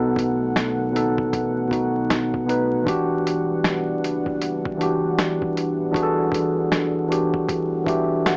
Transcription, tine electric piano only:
0, 0, Header, 1, 2, 480
1, 0, Start_track
1, 0, Key_signature, 1, "minor"
1, 0, Tempo, 769231
1, 1787, Time_signature, 4, 2, 24, 8
1, 5222, End_track
2, 0, Start_track
2, 0, Title_t, "Tine electric piano"
2, 0, Program_c, 0, 4
2, 0, Control_c, 0, 64, 127
2, 0, Note_on_c, 0, 47, 112
2, 0, Note_on_c, 0, 59, 102
2, 0, Note_on_c, 0, 63, 92
2, 0, Note_on_c, 0, 69, 122
2, 518, Note_off_c, 0, 47, 0
2, 524, Note_off_c, 0, 59, 0
2, 529, Note_off_c, 0, 63, 0
2, 535, Note_off_c, 0, 69, 0
2, 570, Note_on_c, 0, 47, 70
2, 582, Note_on_c, 0, 59, 71
2, 591, Note_on_c, 0, 63, 68
2, 603, Note_on_c, 0, 69, 91
2, 1018, Note_off_c, 0, 47, 0
2, 1024, Note_off_c, 0, 59, 0
2, 1029, Note_off_c, 0, 63, 0
2, 1035, Note_off_c, 0, 69, 0
2, 1047, Note_on_c, 0, 47, 79
2, 1058, Note_on_c, 0, 59, 71
2, 1068, Note_on_c, 0, 63, 77
2, 1080, Note_on_c, 0, 66, 84
2, 1497, Note_off_c, 0, 47, 0
2, 1502, Note_off_c, 0, 59, 0
2, 1507, Note_off_c, 0, 63, 0
2, 1513, Note_off_c, 0, 66, 0
2, 1529, Note_on_c, 0, 47, 80
2, 1540, Note_on_c, 0, 59, 77
2, 1551, Note_on_c, 0, 63, 85
2, 1561, Note_on_c, 0, 71, 95
2, 1758, Note_off_c, 0, 47, 0
2, 1763, Note_off_c, 0, 59, 0
2, 1769, Note_off_c, 0, 63, 0
2, 1771, Note_on_c, 0, 52, 93
2, 1774, Note_off_c, 0, 71, 0
2, 1782, Note_on_c, 0, 62, 92
2, 1793, Note_on_c, 0, 66, 96
2, 1794, Control_c, 0, 64, 0
2, 1804, Note_on_c, 0, 67, 116
2, 1891, Control_c, 0, 64, 127
2, 2659, Note_off_c, 0, 52, 0
2, 2664, Note_off_c, 0, 62, 0
2, 2670, Note_off_c, 0, 66, 0
2, 2675, Note_off_c, 0, 67, 0
2, 2979, Note_on_c, 0, 52, 82
2, 2989, Note_on_c, 0, 62, 74
2, 3002, Note_on_c, 0, 66, 70
2, 3012, Note_on_c, 0, 67, 90
2, 3643, Note_off_c, 0, 52, 0
2, 3648, Note_off_c, 0, 62, 0
2, 3654, Note_off_c, 0, 66, 0
2, 3659, Note_off_c, 0, 67, 0
2, 3689, Note_on_c, 0, 52, 99
2, 3699, Note_on_c, 0, 62, 93
2, 3710, Note_on_c, 0, 66, 98
2, 3721, Note_on_c, 0, 68, 96
2, 3761, Note_on_c, 0, 69, 122
2, 3765, Note_off_c, 0, 68, 0
2, 4358, Note_off_c, 0, 52, 0
2, 4363, Note_off_c, 0, 62, 0
2, 4368, Note_off_c, 0, 66, 0
2, 4394, Note_off_c, 0, 69, 0
2, 4412, Note_on_c, 0, 52, 76
2, 4423, Note_on_c, 0, 62, 66
2, 4433, Note_on_c, 0, 66, 68
2, 4444, Note_on_c, 0, 67, 86
2, 4859, Note_off_c, 0, 52, 0
2, 4865, Note_off_c, 0, 62, 0
2, 4870, Note_off_c, 0, 66, 0
2, 4875, Note_off_c, 0, 67, 0
2, 4894, Note_on_c, 0, 52, 77
2, 4905, Note_on_c, 0, 62, 66
2, 4909, Note_on_c, 0, 76, 65
2, 4914, Note_on_c, 0, 66, 65
2, 4926, Note_on_c, 0, 67, 91
2, 5131, Note_off_c, 0, 76, 0
2, 5153, Note_on_c, 0, 78, 67
2, 5222, Note_off_c, 0, 52, 0
2, 5222, Note_off_c, 0, 62, 0
2, 5222, Note_off_c, 0, 66, 0
2, 5222, Note_off_c, 0, 67, 0
2, 5222, Note_off_c, 0, 78, 0
2, 5222, End_track
0, 0, End_of_file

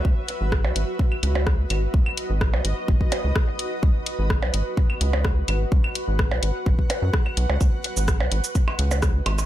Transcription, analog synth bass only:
0, 0, Header, 1, 2, 480
1, 0, Start_track
1, 0, Tempo, 472441
1, 50, Time_signature, 4, 2, 24, 8
1, 9608, End_track
2, 0, Start_track
2, 0, Title_t, "Analog synth bass"
2, 0, Program_c, 0, 38
2, 49, Note_on_c, 0, 37, 99
2, 139, Note_off_c, 0, 37, 0
2, 416, Note_on_c, 0, 32, 96
2, 655, Note_on_c, 0, 35, 84
2, 671, Note_off_c, 0, 32, 0
2, 736, Note_off_c, 0, 35, 0
2, 770, Note_on_c, 0, 32, 79
2, 859, Note_off_c, 0, 32, 0
2, 1250, Note_on_c, 0, 37, 97
2, 1677, Note_off_c, 0, 37, 0
2, 1730, Note_on_c, 0, 32, 92
2, 1903, Note_off_c, 0, 32, 0
2, 1970, Note_on_c, 0, 37, 95
2, 2059, Note_off_c, 0, 37, 0
2, 2336, Note_on_c, 0, 32, 94
2, 2576, Note_on_c, 0, 35, 87
2, 2591, Note_off_c, 0, 32, 0
2, 2657, Note_off_c, 0, 35, 0
2, 2690, Note_on_c, 0, 32, 81
2, 2779, Note_off_c, 0, 32, 0
2, 2930, Note_on_c, 0, 32, 102
2, 3019, Note_off_c, 0, 32, 0
2, 3296, Note_on_c, 0, 37, 94
2, 3376, Note_off_c, 0, 37, 0
2, 3890, Note_on_c, 0, 37, 100
2, 3979, Note_off_c, 0, 37, 0
2, 4256, Note_on_c, 0, 32, 97
2, 4495, Note_on_c, 0, 35, 84
2, 4511, Note_off_c, 0, 32, 0
2, 4576, Note_off_c, 0, 35, 0
2, 4610, Note_on_c, 0, 32, 83
2, 4699, Note_off_c, 0, 32, 0
2, 5090, Note_on_c, 0, 37, 99
2, 5516, Note_off_c, 0, 37, 0
2, 5570, Note_on_c, 0, 32, 89
2, 5743, Note_off_c, 0, 32, 0
2, 5809, Note_on_c, 0, 37, 98
2, 5899, Note_off_c, 0, 37, 0
2, 6176, Note_on_c, 0, 32, 94
2, 6415, Note_on_c, 0, 35, 84
2, 6431, Note_off_c, 0, 32, 0
2, 6496, Note_off_c, 0, 35, 0
2, 6530, Note_on_c, 0, 32, 80
2, 6619, Note_off_c, 0, 32, 0
2, 6770, Note_on_c, 0, 32, 100
2, 6859, Note_off_c, 0, 32, 0
2, 7136, Note_on_c, 0, 42, 101
2, 7217, Note_off_c, 0, 42, 0
2, 7490, Note_on_c, 0, 35, 104
2, 7579, Note_off_c, 0, 35, 0
2, 7615, Note_on_c, 0, 37, 98
2, 7696, Note_off_c, 0, 37, 0
2, 7730, Note_on_c, 0, 37, 97
2, 7819, Note_off_c, 0, 37, 0
2, 8096, Note_on_c, 0, 32, 96
2, 8336, Note_on_c, 0, 35, 85
2, 8351, Note_off_c, 0, 32, 0
2, 8417, Note_off_c, 0, 35, 0
2, 8450, Note_on_c, 0, 32, 82
2, 8539, Note_off_c, 0, 32, 0
2, 8930, Note_on_c, 0, 37, 97
2, 9356, Note_off_c, 0, 37, 0
2, 9409, Note_on_c, 0, 32, 96
2, 9583, Note_off_c, 0, 32, 0
2, 9608, End_track
0, 0, End_of_file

